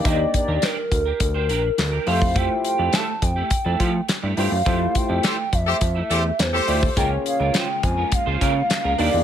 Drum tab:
HH |x-x-x-x-x-x-x-o-|x-x-x-x-x-x-x-o-|x-x-x-x-x-x-x-o-|x-x-x-x-x-x-x-o-|
CP |----x-------x---|----x-------x---|----x-------x---|----x-------x---|
SD |----o-------o---|----o-------o---|----o-------o---|----o-------o---|
BD |o-o---o-o------o|o-----o-o-o-----|o-o---o-o------o|o-----o-o-o-----|